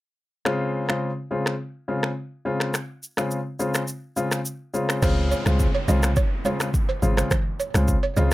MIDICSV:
0, 0, Header, 1, 6, 480
1, 0, Start_track
1, 0, Key_signature, -5, "major"
1, 0, Tempo, 571429
1, 381, Time_signature, 4, 2, 24, 8
1, 7004, End_track
2, 0, Start_track
2, 0, Title_t, "Balafon"
2, 0, Program_c, 0, 12
2, 4222, Note_on_c, 0, 72, 93
2, 4289, Note_off_c, 0, 72, 0
2, 4462, Note_on_c, 0, 73, 70
2, 4529, Note_off_c, 0, 73, 0
2, 4826, Note_on_c, 0, 73, 81
2, 4891, Note_off_c, 0, 73, 0
2, 4942, Note_on_c, 0, 75, 82
2, 5009, Note_off_c, 0, 75, 0
2, 5181, Note_on_c, 0, 73, 92
2, 5248, Note_off_c, 0, 73, 0
2, 5421, Note_on_c, 0, 73, 79
2, 5489, Note_off_c, 0, 73, 0
2, 5786, Note_on_c, 0, 72, 71
2, 5850, Note_off_c, 0, 72, 0
2, 6027, Note_on_c, 0, 72, 74
2, 6091, Note_off_c, 0, 72, 0
2, 6141, Note_on_c, 0, 72, 95
2, 6208, Note_off_c, 0, 72, 0
2, 6381, Note_on_c, 0, 73, 68
2, 6448, Note_off_c, 0, 73, 0
2, 6745, Note_on_c, 0, 73, 75
2, 6810, Note_off_c, 0, 73, 0
2, 6861, Note_on_c, 0, 75, 72
2, 6929, Note_off_c, 0, 75, 0
2, 7004, End_track
3, 0, Start_track
3, 0, Title_t, "Grand piano"
3, 0, Program_c, 1, 0
3, 379, Note_on_c, 1, 49, 90
3, 380, Note_on_c, 1, 56, 81
3, 382, Note_on_c, 1, 60, 83
3, 384, Note_on_c, 1, 65, 96
3, 715, Note_off_c, 1, 49, 0
3, 715, Note_off_c, 1, 56, 0
3, 716, Note_off_c, 1, 60, 0
3, 717, Note_off_c, 1, 65, 0
3, 743, Note_on_c, 1, 49, 70
3, 745, Note_on_c, 1, 56, 64
3, 746, Note_on_c, 1, 60, 62
3, 748, Note_on_c, 1, 65, 80
3, 914, Note_off_c, 1, 49, 0
3, 915, Note_off_c, 1, 56, 0
3, 916, Note_off_c, 1, 60, 0
3, 917, Note_off_c, 1, 65, 0
3, 1098, Note_on_c, 1, 49, 71
3, 1099, Note_on_c, 1, 56, 66
3, 1102, Note_on_c, 1, 60, 67
3, 1103, Note_on_c, 1, 65, 80
3, 1275, Note_off_c, 1, 49, 0
3, 1275, Note_off_c, 1, 56, 0
3, 1277, Note_off_c, 1, 60, 0
3, 1277, Note_off_c, 1, 65, 0
3, 1579, Note_on_c, 1, 49, 69
3, 1581, Note_on_c, 1, 56, 66
3, 1583, Note_on_c, 1, 60, 63
3, 1584, Note_on_c, 1, 65, 79
3, 1755, Note_off_c, 1, 49, 0
3, 1756, Note_off_c, 1, 56, 0
3, 1757, Note_off_c, 1, 60, 0
3, 1758, Note_off_c, 1, 65, 0
3, 2059, Note_on_c, 1, 49, 75
3, 2060, Note_on_c, 1, 56, 66
3, 2062, Note_on_c, 1, 60, 67
3, 2064, Note_on_c, 1, 65, 83
3, 2281, Note_off_c, 1, 49, 0
3, 2282, Note_off_c, 1, 56, 0
3, 2283, Note_off_c, 1, 60, 0
3, 2284, Note_off_c, 1, 65, 0
3, 2664, Note_on_c, 1, 49, 73
3, 2666, Note_on_c, 1, 56, 65
3, 2667, Note_on_c, 1, 60, 64
3, 2670, Note_on_c, 1, 65, 77
3, 2835, Note_off_c, 1, 49, 0
3, 2836, Note_off_c, 1, 56, 0
3, 2836, Note_off_c, 1, 60, 0
3, 2838, Note_off_c, 1, 65, 0
3, 3019, Note_on_c, 1, 49, 75
3, 3020, Note_on_c, 1, 56, 67
3, 3021, Note_on_c, 1, 60, 68
3, 3024, Note_on_c, 1, 65, 82
3, 3195, Note_off_c, 1, 49, 0
3, 3196, Note_off_c, 1, 56, 0
3, 3197, Note_off_c, 1, 60, 0
3, 3198, Note_off_c, 1, 65, 0
3, 3498, Note_on_c, 1, 49, 73
3, 3499, Note_on_c, 1, 56, 67
3, 3501, Note_on_c, 1, 60, 61
3, 3503, Note_on_c, 1, 65, 82
3, 3675, Note_off_c, 1, 49, 0
3, 3676, Note_off_c, 1, 56, 0
3, 3676, Note_off_c, 1, 60, 0
3, 3677, Note_off_c, 1, 65, 0
3, 3978, Note_on_c, 1, 49, 73
3, 3980, Note_on_c, 1, 56, 66
3, 3982, Note_on_c, 1, 60, 65
3, 3983, Note_on_c, 1, 65, 81
3, 4201, Note_off_c, 1, 49, 0
3, 4202, Note_off_c, 1, 56, 0
3, 4203, Note_off_c, 1, 60, 0
3, 4203, Note_off_c, 1, 65, 0
3, 4219, Note_on_c, 1, 49, 91
3, 4220, Note_on_c, 1, 56, 85
3, 4221, Note_on_c, 1, 60, 88
3, 4223, Note_on_c, 1, 65, 102
3, 4554, Note_off_c, 1, 49, 0
3, 4555, Note_off_c, 1, 56, 0
3, 4556, Note_off_c, 1, 60, 0
3, 4557, Note_off_c, 1, 65, 0
3, 4584, Note_on_c, 1, 49, 72
3, 4585, Note_on_c, 1, 56, 68
3, 4587, Note_on_c, 1, 60, 66
3, 4588, Note_on_c, 1, 65, 80
3, 4755, Note_off_c, 1, 49, 0
3, 4755, Note_off_c, 1, 56, 0
3, 4756, Note_off_c, 1, 60, 0
3, 4757, Note_off_c, 1, 65, 0
3, 4938, Note_on_c, 1, 49, 78
3, 4940, Note_on_c, 1, 56, 70
3, 4941, Note_on_c, 1, 60, 67
3, 4943, Note_on_c, 1, 65, 88
3, 5115, Note_off_c, 1, 49, 0
3, 5116, Note_off_c, 1, 56, 0
3, 5116, Note_off_c, 1, 60, 0
3, 5117, Note_off_c, 1, 65, 0
3, 5418, Note_on_c, 1, 49, 75
3, 5420, Note_on_c, 1, 56, 65
3, 5421, Note_on_c, 1, 60, 65
3, 5423, Note_on_c, 1, 65, 78
3, 5595, Note_off_c, 1, 49, 0
3, 5596, Note_off_c, 1, 56, 0
3, 5596, Note_off_c, 1, 60, 0
3, 5597, Note_off_c, 1, 65, 0
3, 5899, Note_on_c, 1, 49, 77
3, 5901, Note_on_c, 1, 56, 69
3, 5902, Note_on_c, 1, 60, 71
3, 5904, Note_on_c, 1, 65, 85
3, 6121, Note_off_c, 1, 49, 0
3, 6122, Note_off_c, 1, 56, 0
3, 6123, Note_off_c, 1, 60, 0
3, 6124, Note_off_c, 1, 65, 0
3, 6502, Note_on_c, 1, 49, 69
3, 6505, Note_on_c, 1, 56, 68
3, 6506, Note_on_c, 1, 60, 69
3, 6507, Note_on_c, 1, 65, 76
3, 6674, Note_off_c, 1, 49, 0
3, 6675, Note_off_c, 1, 56, 0
3, 6676, Note_off_c, 1, 60, 0
3, 6676, Note_off_c, 1, 65, 0
3, 6859, Note_on_c, 1, 49, 80
3, 6860, Note_on_c, 1, 56, 70
3, 6862, Note_on_c, 1, 60, 69
3, 6864, Note_on_c, 1, 65, 89
3, 7004, Note_off_c, 1, 49, 0
3, 7004, Note_off_c, 1, 56, 0
3, 7004, Note_off_c, 1, 60, 0
3, 7004, Note_off_c, 1, 65, 0
3, 7004, End_track
4, 0, Start_track
4, 0, Title_t, "Log drum bass"
4, 0, Program_c, 2, 39
4, 4222, Note_on_c, 2, 37, 109
4, 4489, Note_off_c, 2, 37, 0
4, 4587, Note_on_c, 2, 37, 94
4, 4762, Note_off_c, 2, 37, 0
4, 4941, Note_on_c, 2, 36, 93
4, 5209, Note_off_c, 2, 36, 0
4, 5902, Note_on_c, 2, 32, 97
4, 6077, Note_off_c, 2, 32, 0
4, 6507, Note_on_c, 2, 37, 94
4, 6682, Note_off_c, 2, 37, 0
4, 6862, Note_on_c, 2, 37, 91
4, 7004, Note_off_c, 2, 37, 0
4, 7004, End_track
5, 0, Start_track
5, 0, Title_t, "Downlifter"
5, 0, Program_c, 3, 103
5, 4221, Note_on_c, 3, 60, 84
5, 7004, Note_off_c, 3, 60, 0
5, 7004, End_track
6, 0, Start_track
6, 0, Title_t, "Drums"
6, 381, Note_on_c, 9, 37, 88
6, 388, Note_on_c, 9, 26, 70
6, 465, Note_off_c, 9, 37, 0
6, 472, Note_off_c, 9, 26, 0
6, 745, Note_on_c, 9, 37, 87
6, 753, Note_on_c, 9, 26, 74
6, 829, Note_off_c, 9, 37, 0
6, 837, Note_off_c, 9, 26, 0
6, 1227, Note_on_c, 9, 37, 92
6, 1234, Note_on_c, 9, 26, 72
6, 1311, Note_off_c, 9, 37, 0
6, 1318, Note_off_c, 9, 26, 0
6, 1706, Note_on_c, 9, 37, 96
6, 1713, Note_on_c, 9, 26, 72
6, 1790, Note_off_c, 9, 37, 0
6, 1797, Note_off_c, 9, 26, 0
6, 2186, Note_on_c, 9, 37, 90
6, 2194, Note_on_c, 9, 26, 76
6, 2270, Note_off_c, 9, 37, 0
6, 2278, Note_off_c, 9, 26, 0
6, 2302, Note_on_c, 9, 37, 90
6, 2302, Note_on_c, 9, 82, 67
6, 2309, Note_on_c, 9, 26, 74
6, 2386, Note_off_c, 9, 37, 0
6, 2386, Note_off_c, 9, 82, 0
6, 2393, Note_off_c, 9, 26, 0
6, 2545, Note_on_c, 9, 82, 52
6, 2629, Note_off_c, 9, 82, 0
6, 2665, Note_on_c, 9, 37, 86
6, 2669, Note_on_c, 9, 82, 64
6, 2672, Note_on_c, 9, 26, 72
6, 2749, Note_off_c, 9, 37, 0
6, 2753, Note_off_c, 9, 82, 0
6, 2756, Note_off_c, 9, 26, 0
6, 2780, Note_on_c, 9, 82, 65
6, 2864, Note_off_c, 9, 82, 0
6, 3021, Note_on_c, 9, 82, 57
6, 3105, Note_off_c, 9, 82, 0
6, 3145, Note_on_c, 9, 82, 79
6, 3146, Note_on_c, 9, 37, 94
6, 3154, Note_on_c, 9, 26, 74
6, 3229, Note_off_c, 9, 82, 0
6, 3230, Note_off_c, 9, 37, 0
6, 3238, Note_off_c, 9, 26, 0
6, 3256, Note_on_c, 9, 82, 68
6, 3340, Note_off_c, 9, 82, 0
6, 3500, Note_on_c, 9, 82, 52
6, 3584, Note_off_c, 9, 82, 0
6, 3624, Note_on_c, 9, 37, 91
6, 3625, Note_on_c, 9, 82, 71
6, 3632, Note_on_c, 9, 26, 75
6, 3708, Note_off_c, 9, 37, 0
6, 3709, Note_off_c, 9, 82, 0
6, 3716, Note_off_c, 9, 26, 0
6, 3741, Note_on_c, 9, 82, 80
6, 3825, Note_off_c, 9, 82, 0
6, 3984, Note_on_c, 9, 82, 49
6, 4068, Note_off_c, 9, 82, 0
6, 4106, Note_on_c, 9, 37, 92
6, 4113, Note_on_c, 9, 82, 67
6, 4114, Note_on_c, 9, 26, 77
6, 4190, Note_off_c, 9, 37, 0
6, 4197, Note_off_c, 9, 82, 0
6, 4198, Note_off_c, 9, 26, 0
6, 4220, Note_on_c, 9, 64, 80
6, 4221, Note_on_c, 9, 37, 90
6, 4221, Note_on_c, 9, 49, 90
6, 4221, Note_on_c, 9, 82, 73
6, 4222, Note_on_c, 9, 36, 115
6, 4229, Note_on_c, 9, 26, 76
6, 4304, Note_off_c, 9, 64, 0
6, 4305, Note_off_c, 9, 37, 0
6, 4305, Note_off_c, 9, 49, 0
6, 4305, Note_off_c, 9, 82, 0
6, 4306, Note_off_c, 9, 36, 0
6, 4313, Note_off_c, 9, 26, 0
6, 4466, Note_on_c, 9, 82, 54
6, 4550, Note_off_c, 9, 82, 0
6, 4584, Note_on_c, 9, 63, 76
6, 4586, Note_on_c, 9, 37, 91
6, 4590, Note_on_c, 9, 82, 66
6, 4593, Note_on_c, 9, 26, 71
6, 4668, Note_off_c, 9, 63, 0
6, 4670, Note_off_c, 9, 37, 0
6, 4674, Note_off_c, 9, 82, 0
6, 4677, Note_off_c, 9, 26, 0
6, 4701, Note_on_c, 9, 36, 98
6, 4701, Note_on_c, 9, 82, 65
6, 4785, Note_off_c, 9, 36, 0
6, 4785, Note_off_c, 9, 82, 0
6, 4939, Note_on_c, 9, 63, 79
6, 4939, Note_on_c, 9, 64, 79
6, 4942, Note_on_c, 9, 82, 62
6, 5023, Note_off_c, 9, 63, 0
6, 5023, Note_off_c, 9, 64, 0
6, 5026, Note_off_c, 9, 82, 0
6, 5065, Note_on_c, 9, 82, 82
6, 5066, Note_on_c, 9, 37, 98
6, 5074, Note_on_c, 9, 26, 79
6, 5149, Note_off_c, 9, 82, 0
6, 5150, Note_off_c, 9, 37, 0
6, 5158, Note_off_c, 9, 26, 0
6, 5176, Note_on_c, 9, 82, 67
6, 5181, Note_on_c, 9, 36, 125
6, 5260, Note_off_c, 9, 82, 0
6, 5265, Note_off_c, 9, 36, 0
6, 5417, Note_on_c, 9, 63, 73
6, 5420, Note_on_c, 9, 82, 52
6, 5501, Note_off_c, 9, 63, 0
6, 5504, Note_off_c, 9, 82, 0
6, 5545, Note_on_c, 9, 37, 96
6, 5546, Note_on_c, 9, 82, 73
6, 5553, Note_on_c, 9, 26, 74
6, 5629, Note_off_c, 9, 37, 0
6, 5630, Note_off_c, 9, 82, 0
6, 5637, Note_off_c, 9, 26, 0
6, 5661, Note_on_c, 9, 36, 91
6, 5662, Note_on_c, 9, 82, 78
6, 5745, Note_off_c, 9, 36, 0
6, 5746, Note_off_c, 9, 82, 0
6, 5899, Note_on_c, 9, 64, 74
6, 5903, Note_on_c, 9, 82, 49
6, 5983, Note_off_c, 9, 64, 0
6, 5987, Note_off_c, 9, 82, 0
6, 6023, Note_on_c, 9, 63, 73
6, 6026, Note_on_c, 9, 37, 94
6, 6033, Note_on_c, 9, 82, 64
6, 6034, Note_on_c, 9, 26, 75
6, 6107, Note_off_c, 9, 63, 0
6, 6110, Note_off_c, 9, 37, 0
6, 6117, Note_off_c, 9, 82, 0
6, 6118, Note_off_c, 9, 26, 0
6, 6139, Note_on_c, 9, 64, 82
6, 6141, Note_on_c, 9, 36, 109
6, 6141, Note_on_c, 9, 37, 93
6, 6141, Note_on_c, 9, 82, 71
6, 6149, Note_on_c, 9, 26, 75
6, 6223, Note_off_c, 9, 64, 0
6, 6225, Note_off_c, 9, 36, 0
6, 6225, Note_off_c, 9, 37, 0
6, 6225, Note_off_c, 9, 82, 0
6, 6233, Note_off_c, 9, 26, 0
6, 6385, Note_on_c, 9, 82, 51
6, 6469, Note_off_c, 9, 82, 0
6, 6505, Note_on_c, 9, 37, 92
6, 6505, Note_on_c, 9, 63, 77
6, 6509, Note_on_c, 9, 82, 67
6, 6512, Note_on_c, 9, 26, 73
6, 6589, Note_off_c, 9, 37, 0
6, 6589, Note_off_c, 9, 63, 0
6, 6593, Note_off_c, 9, 82, 0
6, 6596, Note_off_c, 9, 26, 0
6, 6619, Note_on_c, 9, 82, 66
6, 6620, Note_on_c, 9, 36, 94
6, 6703, Note_off_c, 9, 82, 0
6, 6704, Note_off_c, 9, 36, 0
6, 6859, Note_on_c, 9, 63, 78
6, 6859, Note_on_c, 9, 64, 76
6, 6861, Note_on_c, 9, 82, 64
6, 6943, Note_off_c, 9, 63, 0
6, 6943, Note_off_c, 9, 64, 0
6, 6945, Note_off_c, 9, 82, 0
6, 7004, End_track
0, 0, End_of_file